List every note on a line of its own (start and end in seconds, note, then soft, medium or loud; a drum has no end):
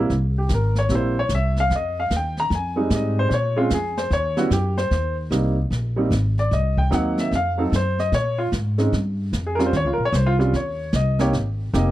0.10 0.49 C2 medium
0.10 brush sweep medium
0.10 kick soft
0.10 snare soft
0.38 0.51 G4 medium
0.49 0.88 G#1 medium
0.49 kick soft
0.49 snare medium
0.49 hi-hat pedal medium
0.54 0.78 A#4 medium
0.75 0.91 C#5 medium
0.75 snare soft
0.89 1.29 A#1 medium
0.89 1.14 G3 soft
0.89 1.14 A#3 soft
0.89 1.14 C4 soft
0.89 1.14 E4 medium
0.89 brush sweep medium
0.89 kick soft
0.89 snare soft
0.95 1.18 C5 medium
1.19 1.31 C#5 medium
1.29 1.69 C2 medium
1.29 kick soft
1.29 snare medium
1.29 hi-hat pedal medium
1.35 1.58 E5 medium
1.56 1.72 F5 loud
1.56 snare soft
1.70 2.09 F2 medium
1.70 brush sweep soft
1.70 kick soft
1.70 snare soft
1.75 1.98 D#5 medium
2.00 2.12 F5 medium
2.10 2.50 D#2 medium
2.10 kick soft
2.10 snare medium
2.10 hi-hat pedal medium
2.16 2.39 G5 medium
2.37 2.52 A#5 loud
2.37 snare soft
2.50 2.89 F2 medium
2.50 brush sweep soft
2.50 kick soft
2.50 snare soft
2.55 2.90 G#5 medium
2.76 3.28 G3 medium
2.76 3.28 G#3 medium
2.76 3.28 C4 medium
2.76 3.28 D#4 medium
2.90 3.29 G#2 medium
2.90 kick soft
2.90 snare medium
2.90 hi-hat pedal medium
2.95 3.18 D#5 medium
3.19 3.28 C5 medium
3.29 3.69 A#2 medium
3.29 3.32 C5 medium
3.29 brush sweep soft
3.29 kick soft
3.29 snare soft
3.34 3.58 C#5 medium
3.57 3.69 G#3 medium
3.57 3.69 C4 medium
3.57 3.70 C#4 medium
3.57 3.70 F4 medium
3.70 4.10 F2 medium
3.70 3.98 G#4 medium
3.70 kick soft
3.70 snare medium
3.70 hi-hat pedal medium
3.97 4.11 C5 medium
3.97 snare medium
4.10 4.50 D#2 medium
4.10 4.38 C#5 medium
4.10 brush sweep medium
4.10 kick soft
4.10 snare soft
4.37 4.50 G3 medium
4.37 4.50 B3 medium
4.37 4.50 C#4 medium
4.37 4.51 E4 medium
4.37 4.50 F#4 medium
4.37 snare soft
4.50 4.90 F#2 medium
4.50 4.77 G4 medium
4.50 kick soft
4.50 snare medium
4.50 hi-hat pedal medium
4.77 5.15 C5 medium
4.77 snare soft
4.91 5.30 D#2 medium
4.91 brush sweep soft
4.91 kick soft
4.91 snare soft
5.31 5.70 C2 medium
5.31 5.55 G3 medium
5.31 5.55 A#3 medium
5.31 5.55 C4 medium
5.31 5.55 D#4 medium
5.31 kick soft
5.31 snare medium
5.31 hi-hat pedal medium
5.71 6.10 A#1 medium
5.71 brush sweep soft
5.71 kick soft
5.71 snare soft
5.96 6.10 G3 medium
5.96 6.10 A#3 soft
5.96 6.10 C4 medium
5.96 6.10 D#4 medium
6.10 6.50 G#1 medium
6.10 kick soft
6.10 snare medium
6.10 hi-hat pedal medium
6.38 6.52 D5 medium
6.38 snare soft
6.51 6.90 C2 medium
6.51 6.78 D#5 medium
6.51 brush sweep medium
6.51 kick soft
6.51 snare soft
6.77 6.92 G5 medium
6.77 kick medium
6.90 7.31 D#2 medium
6.90 7.31 F#3 medium
6.90 7.31 A#3 medium
6.90 7.32 C4 medium
6.90 7.32 D#4 medium
6.90 7.18 F#5 medium
6.90 snare medium
6.90 hi-hat pedal medium
7.17 7.33 E5 medium
7.17 snare soft
7.31 7.71 F2 medium
7.31 7.59 F5 medium
7.31 brush sweep soft
7.31 kick soft
7.31 snare soft
7.58 7.70 F#3 medium
7.58 7.71 A3 medium
7.58 7.71 C4 medium
7.58 7.71 D#4 medium
7.58 7.72 A4 medium
7.72 8.11 F#2 medium
7.72 7.99 C5 medium
7.72 kick soft
7.72 snare medium
7.72 hi-hat pedal medium
7.99 8.13 D#5 loud
7.99 snare soft
8.12 8.51 A#2 medium
8.12 8.39 C#5 medium
8.12 brush sweep medium
8.12 kick soft
8.12 snare soft
8.38 8.47 F4 medium
8.52 8.91 G#2 medium
8.52 kick soft
8.52 snare medium
8.52 hi-hat pedal soft
8.78 8.91 G#3 medium
8.78 8.91 C4 medium
8.78 8.91 C#4 medium
8.78 8.91 D#4 medium
8.78 snare soft
8.92 9.31 G2 medium
8.92 brush sweep medium
8.92 kick soft
8.92 snare soft
9.33 9.72 F2 medium
9.33 kick soft
9.33 snare medium
9.33 hi-hat pedal medium
9.46 9.59 G#4 medium
9.55 9.71 G3 medium
9.55 9.71 C4 medium
9.55 9.64 A#4 medium
9.55 snare soft
9.59 9.72 C#4 medium
9.59 9.72 F4 medium
9.66 9.73 C5 medium
9.73 9.84 D#2 medium
9.73 9.87 C#5 medium
9.73 brush sweep soft
9.73 kick soft
9.73 snare soft
9.84 9.97 C#2 medium
9.84 9.99 F4 medium
9.93 10.03 A#4 medium
9.98 10.11 A#1 medium
10.05 10.12 C#5 loud
10.12 10.52 C2 medium
10.12 10.27 C5 medium
10.12 kick soft
10.12 snare medium
10.12 hi-hat pedal medium
10.26 10.34 F4 medium
10.39 10.52 G3 medium
10.39 10.52 C4 medium
10.39 10.52 C#4 medium
10.39 10.52 F4 medium
10.39 snare soft
10.53 10.92 D#2 medium
10.53 10.92 C#5 medium
10.53 brush sweep medium
10.53 kick soft
10.53 snare soft
10.93 11.32 C2 medium
10.93 11.20 D#5 medium
10.93 kick soft
10.93 snare medium
10.93 hi-hat pedal medium
11.19 11.32 A#3 medium
11.19 11.32 C4 medium
11.19 11.32 D#4 medium
11.19 11.32 G4 medium
11.19 11.33 C#5 medium
11.19 snare medium
11.33 11.72 G#1 medium
11.33 brush sweep soft
11.33 kick soft
11.33 snare soft
11.73 11.91 F1 medium
11.73 11.91 A#3 medium
11.73 11.91 C4 medium
11.73 11.91 D#4 medium
11.73 11.91 G4 medium
11.73 11.91 D#5 medium
11.73 kick soft
11.73 snare medium
11.73 hi-hat pedal medium